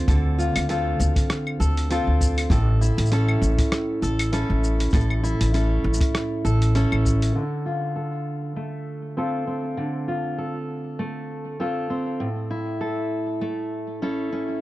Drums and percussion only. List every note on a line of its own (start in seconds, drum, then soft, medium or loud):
0.08 kick loud
0.08 open hi-hat soft
0.08 shaker soft
0.39 shaker medium
0.56 open hi-hat medium
0.56 claves medium
0.56 shaker soft
0.69 open hi-hat soft
0.69 shaker soft
1.00 shaker medium
1.16 kick medium
1.16 open hi-hat soft
1.16 shaker soft
1.30 cross-stick medium
1.30 open hi-hat soft
1.30 shaker soft
1.47 claves medium
1.61 shaker medium
1.77 open hi-hat medium
1.77 shaker soft
1.91 open hi-hat soft
1.91 shaker soft
2.21 kick medium
2.21 shaker medium
2.38 open hi-hat medium
2.38 claves medium
2.38 shaker soft
2.50 kick loud
2.50 open hi-hat soft
2.50 shaker soft
2.82 shaker medium
2.98 open hi-hat medium
3.06 shaker soft
3.12 open hi-hat soft
3.12 shaker soft
3.28 claves medium
3.42 shaker medium
3.59 kick loud
3.59 open hi-hat medium
3.59 shaker soft
3.72 cross-stick medium
3.72 open hi-hat soft
3.72 shaker soft
4.03 shaker medium
4.19 open hi-hat medium
4.19 claves medium
4.19 shaker soft
4.33 open hi-hat soft
4.33 shaker soft
4.64 shaker medium
4.80 open hi-hat medium
4.80 shaker soft
4.90 kick loud
4.90 open hi-hat soft
4.90 shaker soft
4.94 shaker soft
5.00 shaker soft
5.10 claves medium
5.25 shaker medium
5.41 open hi-hat medium
5.41 shaker soft
5.54 open hi-hat soft
5.54 shaker soft
5.94 shaker medium
6.01 kick loud
6.01 open hi-hat medium
6.01 shaker soft
6.15 cross-stick medium
6.15 open hi-hat soft
6.15 shaker soft
6.45 shaker medium
6.62 open hi-hat medium
6.62 shaker soft
6.75 open hi-hat soft
6.75 shaker soft
6.92 claves medium
7.05 kick medium
7.05 shaker medium
7.22 open hi-hat medium
7.22 shaker soft